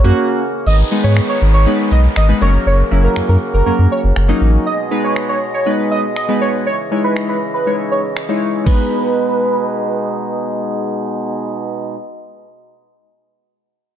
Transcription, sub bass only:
0, 0, Header, 1, 2, 480
1, 0, Start_track
1, 0, Key_signature, 5, "minor"
1, 0, Tempo, 500000
1, 639, Time_signature, 4, 2, 24, 8
1, 13403, End_track
2, 0, Start_track
2, 0, Title_t, "Sub bass"
2, 0, Program_c, 0, 38
2, 42, Note_on_c, 0, 42, 97
2, 120, Note_off_c, 0, 42, 0
2, 640, Note_on_c, 0, 32, 108
2, 798, Note_off_c, 0, 32, 0
2, 1000, Note_on_c, 0, 44, 90
2, 1157, Note_off_c, 0, 44, 0
2, 1361, Note_on_c, 0, 32, 97
2, 1597, Note_off_c, 0, 32, 0
2, 1838, Note_on_c, 0, 35, 92
2, 1996, Note_off_c, 0, 35, 0
2, 2080, Note_on_c, 0, 32, 90
2, 2238, Note_off_c, 0, 32, 0
2, 2319, Note_on_c, 0, 30, 98
2, 2477, Note_off_c, 0, 30, 0
2, 2558, Note_on_c, 0, 30, 112
2, 2716, Note_off_c, 0, 30, 0
2, 2800, Note_on_c, 0, 30, 97
2, 2958, Note_off_c, 0, 30, 0
2, 3040, Note_on_c, 0, 42, 47
2, 3088, Note_off_c, 0, 42, 0
2, 3159, Note_on_c, 0, 42, 106
2, 3238, Note_off_c, 0, 42, 0
2, 3398, Note_on_c, 0, 30, 90
2, 3478, Note_off_c, 0, 30, 0
2, 3518, Note_on_c, 0, 42, 48
2, 3567, Note_off_c, 0, 42, 0
2, 3639, Note_on_c, 0, 42, 88
2, 3718, Note_off_c, 0, 42, 0
2, 3879, Note_on_c, 0, 30, 90
2, 3958, Note_off_c, 0, 30, 0
2, 3998, Note_on_c, 0, 30, 91
2, 4156, Note_off_c, 0, 30, 0
2, 4236, Note_on_c, 0, 33, 86
2, 4395, Note_off_c, 0, 33, 0
2, 13403, End_track
0, 0, End_of_file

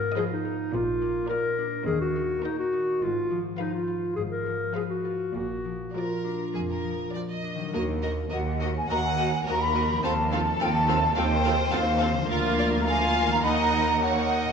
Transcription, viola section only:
0, 0, Header, 1, 2, 480
1, 0, Start_track
1, 0, Key_signature, -6, "minor"
1, 0, Tempo, 572519
1, 612, Time_signature, 4, 2, 24, 8
1, 3499, Tempo, 589971
1, 7339, Tempo, 567644
1, 10699, Tempo, 581959
1, 12064, End_track
2, 0, Start_track
2, 0, Title_t, "Viola section"
2, 0, Program_c, 0, 48
2, 136, Note_on_c, 0, 53, 61
2, 490, Note_off_c, 0, 53, 0
2, 1086, Note_on_c, 0, 58, 42
2, 1446, Note_off_c, 0, 58, 0
2, 2046, Note_on_c, 0, 58, 48
2, 2408, Note_off_c, 0, 58, 0
2, 3015, Note_on_c, 0, 53, 38
2, 3375, Note_off_c, 0, 53, 0
2, 3974, Note_on_c, 0, 53, 41
2, 4335, Note_off_c, 0, 53, 0
2, 4944, Note_on_c, 0, 53, 38
2, 5306, Note_off_c, 0, 53, 0
2, 5915, Note_on_c, 0, 53, 39
2, 6274, Note_off_c, 0, 53, 0
2, 6392, Note_on_c, 0, 66, 46
2, 6393, Note_on_c, 0, 58, 49
2, 6457, Note_off_c, 0, 66, 0
2, 6458, Note_off_c, 0, 58, 0
2, 6626, Note_on_c, 0, 58, 40
2, 6629, Note_on_c, 0, 66, 42
2, 6691, Note_off_c, 0, 58, 0
2, 6694, Note_off_c, 0, 66, 0
2, 6863, Note_on_c, 0, 66, 36
2, 6865, Note_on_c, 0, 58, 37
2, 6928, Note_off_c, 0, 66, 0
2, 6930, Note_off_c, 0, 58, 0
2, 7105, Note_on_c, 0, 58, 45
2, 7105, Note_on_c, 0, 66, 45
2, 7170, Note_off_c, 0, 58, 0
2, 7170, Note_off_c, 0, 66, 0
2, 7331, Note_on_c, 0, 66, 45
2, 7334, Note_on_c, 0, 58, 42
2, 7398, Note_off_c, 0, 66, 0
2, 7401, Note_off_c, 0, 58, 0
2, 7579, Note_on_c, 0, 58, 42
2, 7579, Note_on_c, 0, 66, 44
2, 7646, Note_off_c, 0, 58, 0
2, 7647, Note_off_c, 0, 66, 0
2, 7822, Note_on_c, 0, 66, 51
2, 7824, Note_on_c, 0, 58, 49
2, 7890, Note_off_c, 0, 66, 0
2, 7892, Note_off_c, 0, 58, 0
2, 8063, Note_on_c, 0, 58, 43
2, 8064, Note_on_c, 0, 66, 46
2, 8131, Note_off_c, 0, 58, 0
2, 8132, Note_off_c, 0, 66, 0
2, 8302, Note_on_c, 0, 60, 59
2, 8303, Note_on_c, 0, 65, 52
2, 8370, Note_off_c, 0, 60, 0
2, 8371, Note_off_c, 0, 65, 0
2, 8544, Note_on_c, 0, 65, 48
2, 8546, Note_on_c, 0, 60, 52
2, 8612, Note_off_c, 0, 65, 0
2, 8614, Note_off_c, 0, 60, 0
2, 8788, Note_on_c, 0, 60, 49
2, 8789, Note_on_c, 0, 65, 46
2, 8855, Note_off_c, 0, 60, 0
2, 8857, Note_off_c, 0, 65, 0
2, 9019, Note_on_c, 0, 65, 57
2, 9020, Note_on_c, 0, 60, 55
2, 9086, Note_off_c, 0, 65, 0
2, 9087, Note_off_c, 0, 60, 0
2, 9261, Note_on_c, 0, 60, 57
2, 9261, Note_on_c, 0, 65, 59
2, 9328, Note_off_c, 0, 60, 0
2, 9328, Note_off_c, 0, 65, 0
2, 9500, Note_on_c, 0, 60, 51
2, 9501, Note_on_c, 0, 65, 51
2, 9567, Note_off_c, 0, 60, 0
2, 9569, Note_off_c, 0, 65, 0
2, 9737, Note_on_c, 0, 60, 58
2, 9739, Note_on_c, 0, 65, 57
2, 9805, Note_off_c, 0, 60, 0
2, 9807, Note_off_c, 0, 65, 0
2, 9976, Note_on_c, 0, 60, 53
2, 9979, Note_on_c, 0, 65, 51
2, 10044, Note_off_c, 0, 60, 0
2, 10047, Note_off_c, 0, 65, 0
2, 10215, Note_on_c, 0, 58, 64
2, 10218, Note_on_c, 0, 65, 67
2, 10666, Note_off_c, 0, 58, 0
2, 10668, Note_off_c, 0, 65, 0
2, 10703, Note_on_c, 0, 58, 47
2, 10704, Note_on_c, 0, 65, 55
2, 11167, Note_off_c, 0, 58, 0
2, 11167, Note_off_c, 0, 65, 0
2, 11179, Note_on_c, 0, 63, 50
2, 11180, Note_on_c, 0, 58, 51
2, 11644, Note_off_c, 0, 58, 0
2, 11646, Note_off_c, 0, 63, 0
2, 11654, Note_on_c, 0, 58, 45
2, 11656, Note_on_c, 0, 63, 52
2, 12064, Note_off_c, 0, 58, 0
2, 12064, Note_off_c, 0, 63, 0
2, 12064, End_track
0, 0, End_of_file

